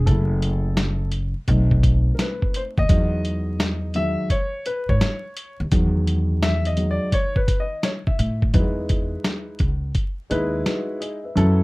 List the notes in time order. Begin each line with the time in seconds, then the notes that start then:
0.06 F#1 A3 E4 G#4 A4, kick, closed hi-hat
0.42 closed hi-hat
0.77 snare, closed hi-hat
1.12 closed hi-hat
1.47 B1 A3 C4 D#4, kick, closed hi-hat
1.71 kick
1.83 kick, closed hi-hat
2.15 A#4
2.19 B4, snare, closed hi-hat
2.42 kick
2.54 C5, closed hi-hat
2.78 D#2 D#5, kick
2.89 E2 F#3 G#3 D#4, kick, closed hi-hat
3.25 closed hi-hat
3.60 snare, closed hi-hat
3.94 D#3 F#3 G#3 E5, closed hi-hat
4.30 C#5, kick, closed hi-hat
4.66 B4, closed hi-hat
4.89 G#2 C#5, kick
5.01 snare, closed hi-hat
5.37 closed hi-hat
5.60 D#2
5.71 E2 D#3 F#3 G#3, kick, closed hi-hat
6.07 closed hi-hat
6.42 E5, snare, closed hi-hat
6.65 D#5, closed hi-hat
6.77 F#3 G#3 D#4, closed hi-hat
6.91 D5
7.12 C#5, kick, closed hi-hat
7.36 B4, kick
7.48 kick, closed hi-hat
7.60 D#5
7.83 C#5, snare, closed hi-hat
8.07 E5, muted upright bass stroke, kick
8.19 A2, closed hi-hat
8.42 kick
8.53 E2 F#3 D#4 E4 B4, kick, closed hi-hat
8.59 G#3
8.89 kick, closed hi-hat
9.24 snare, closed hi-hat
9.59 C#2, kick, closed hi-hat
9.95 kick, closed hi-hat
10.30 D#2 G#3 D#4 E4 B4, closed hi-hat
10.65 F#4 B4, snare, closed hi-hat
11.00 G#4 D#5, closed hi-hat
11.24 B4 E5
11.35 F#2 F#3 C#4 E4 A4, closed hi-hat